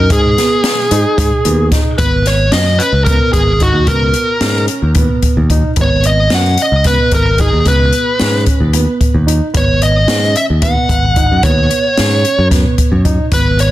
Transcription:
Already playing: A#4
0.10 G#2 G#4, kick, closed hi-hat
0.38 B3, snare, closed hi-hat
0.64 snare, closed hi-hat
0.91 G#2 D#4, closed hi-hat
1.18 G#2, kick, closed hi-hat
1.45 D#2 B3, closed hi-hat
1.72 D#4, kick, snare, closed hi-hat
1.98 G#1 B3 B4, kick, closed hi-hat
2.26 C#5, snare, closed hi-hat
2.52 F#2 C#4 D#5, snare, closed hi-hat
2.79 B4, closed hi-hat
2.92 C#2
3.05 B3 A#4, kick, closed hi-hat
3.33 G#1 G#4, kick, closed hi-hat
3.60 D#4 F#4, kick, closed hi-hat
3.74 D#2
3.87 C#2 B3 A#4, kick, closed hi-hat
4.14 closed hi-hat
4.41 G#2 C#4, snare, closed hi-hat
4.68 closed hi-hat
4.82 D#2
4.95 B3, kick, closed hi-hat
5.22 kick, closed hi-hat
5.37 D#2
5.50 D#4, kick, closed hi-hat
5.76 G#1 B3, kick, closed hi-hat
5.81 C#5
6.04 D#5, closed hi-hat
6.30 F#2 C#4, snare, closed hi-hat
6.35 F#5
6.57 closed hi-hat
6.62 D#5
6.72 C#2
6.84 B3 B4, kick, closed hi-hat
7.12 G#1 A#4, kick, closed hi-hat
7.38 D#4 G#4, kick, closed hi-hat
7.53 D#2
7.65 C#2 B3 B4, kick, closed hi-hat
7.93 closed hi-hat
8.20 G#2 C#4, snare, closed hi-hat
8.46 kick, closed hi-hat
8.60 D#2
8.73 B3, closed hi-hat
9.01 kick, closed hi-hat
9.14 D#2
9.27 D#4, closed hi-hat
9.54 G#1 B3 C#5, kick, closed hi-hat
9.82 D#5, closed hi-hat
10.07 G#2 C#4, snare, closed hi-hat
10.36 E5, closed hi-hat
10.50 D#2
10.62 B3 F#5, kick, closed hi-hat
10.89 G#1, kick, closed hi-hat
11.16 D#4, kick, closed hi-hat
11.32 F#2
11.43 D#2 B3 C#5, kick, closed hi-hat
11.71 closed hi-hat
11.98 G#2 C#4, snare, closed hi-hat
12.25 closed hi-hat
12.39 F#2
12.51 B3, kick, snare, closed hi-hat
12.78 kick, closed hi-hat
12.92 F#2
13.05 D#4, kick, closed hi-hat
13.32 G#1 B3 B4, kick, closed hi-hat
13.59 C#5, closed hi-hat

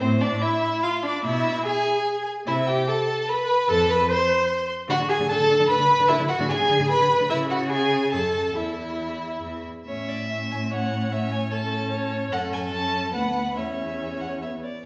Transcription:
0.00 A2 C4 C5
0.21 D4 D5
0.41 E4 E5
0.83 F4 F5
1.03 D4 D5
1.24 B2 E4 E5
1.65 G#4 G#5
2.47 C3 E4 E5
2.67 G4 G5
2.88 A4 A5
3.29 B4 B5
3.69 F2 A4 A5
3.90 B4 B5
4.10 C5 C6
4.89 D3 F#4 F#5
5.00 D3
5.08 G#4 G#5
5.20 D3
5.29 D3 A4 A5
5.40 D3
5.50 D3
5.60 D3
5.68 D3 B4 B5
5.79 D3
5.99 D3
6.08 D3 E4 E5
6.19 D3
6.28 F#4 F#5
6.40 D3
6.49 D3 G#4 G#5
6.60 D3
6.70 D3
6.80 D3
6.90 D3 B4 B5
7.00 D3
7.20 D3
7.30 C#3 E4 E5
7.49 F#4 F#5
7.70 G#4 G#5
8.12 F#2 A4 A5
8.55 E2 E4 E5
9.44 E2
9.87 A2 C#4 C#5 E5
10.09 D5
10.29 C#4 E5
10.51 G#5
10.71 C#5 F#5
11.11 C#4 C#5 E5
11.32 G#5
11.51 C#4 A4 A5
11.91 C#5
12.31 F#2 C#4 A4 F#5
12.53 G#5
12.72 C#4 A5
13.13 D2 B3 B4 F#5
13.56 E2 C#4 C#5 E5
14.20 F#5
14.42 B3 E5
14.63 D5

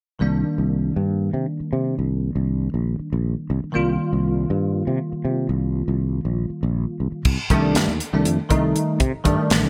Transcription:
0.19 C2 D#3 G3 A#3 D4
0.58 C2
0.96 G2
1.34 C3
1.60 muted fretless electric bass stroke
1.73 C3
1.99 C2
2.35 C2
2.74 A#1
3.00 muted fretless electric bass stroke
3.13 A#1
3.50 C2
3.64 muted fretless electric bass stroke
3.72 D#3 G3 A#3 F4
3.76 C2
4.13 C2
4.50 G2
4.87 C3
5.12 muted fretless electric bass stroke
5.25 C3
5.49 C2
5.88 C2
6.25 A#1
6.50 muted fretless electric bass stroke
6.63 A#1
7.00 C2
7.12 muted fretless electric bass stroke
7.25 C2, kick, crash
7.50 C2 D#3 G3 A3 D4, kick, closed hi-hat
7.75 G2, snare, closed hi-hat
7.88 D#2
8.00 closed hi-hat
8.13 C2 D#3 G3 A3 D4
8.25 F2, closed hi-hat
8.49 C2 D#3 G3 A3 D#4, kick, closed hi-hat
8.76 closed hi-hat
9.00 C3, kick, closed hi-hat
9.15 muted fretless electric bass stroke
9.24 G2 D#3 G3 A3 D4, kick, closed hi-hat
9.50 A1, snare, closed hi-hat
9.63 C2

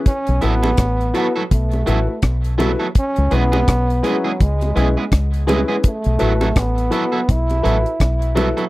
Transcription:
0.06 C#4, kick, closed hi-hat
0.27 B1, closed hi-hat
0.41 A1 F#3 B3 E4 F#4 A4 B4, closed hi-hat
0.63 F#3 B3 E4 A4, high bongo
0.77 A1, kick, cross-stick, closed hi-hat
1.01 closed hi-hat
1.14 F#3 B3 E4 F#4 A4 B4, closed hi-hat
1.36 F#3 B3 E4 A4
1.51 B1 A3, kick, closed hi-hat
1.71 closed hi-hat, high bongo
1.86 A1 F#3 B3 E4 F#4 A4 B4, closed hi-hat
2.08 A4 B4
2.22 B1, kick, cross-stick, closed hi-hat
2.44 closed hi-hat
2.58 F#3 B3 E4 F#4 A4 B4, closed hi-hat, high bongo, low bongo
2.79 F#3 B3 E4 A4
2.95 kick, closed hi-hat
3.00 C#4
3.16 C#2, closed hi-hat
3.30 B1 G#3 B3 C#4 E4 G#4 B4, closed hi-hat
3.36 B3
3.52 G#3 B3 E4 G#4, high bongo
3.68 B1, kick, cross-stick, closed hi-hat
3.90 closed hi-hat
4.03 G#3 B3 C#4 E4 G#4 B4, closed hi-hat
4.07 F#3
4.24 G#3 B3 E4 G#4
4.40 C#2 G#3, kick, closed hi-hat
4.61 closed hi-hat, high bongo
4.74 B1 G#3 B3 C#4 E4 G#4 B4, closed hi-hat
4.97 G#3 B3 E4 G#4 B4
5.12 C#2, kick, cross-stick, closed hi-hat
5.34 closed hi-hat
5.46 G#3 B3 C#4 E4 G#4 B4, closed hi-hat, high bongo, low bongo
5.68 G#3 B3 C#4 E4 G#4 B4
5.84 A3, kick, closed hi-hat
6.04 B1, closed hi-hat
6.18 A1 F#3 B3 E4 F#4 A4 B4, closed hi-hat
6.41 F#3 B3 E4 A4, closed hi-hat, high bongo
6.56 A1 B3, kick, cross-stick, closed hi-hat
6.78 closed hi-hat
6.90 F#3 B3 E4 F#4 A4 B4, closed hi-hat
7.12 F#3 B3 E4 A4
7.29 B1 E4, kick, closed hi-hat
7.50 closed hi-hat, high bongo
7.62 A1 F#3 B3 E4 F#4 A4 B4, closed hi-hat
7.84 A4 B4, closed hi-hat
8.00 B1, kick, cross-stick, closed hi-hat
8.22 closed hi-hat
8.35 F#3 B3 E4 F#4 A4 B4, closed hi-hat, high bongo, low bongo
8.57 F#3 B3 E4 A4, closed hi-hat

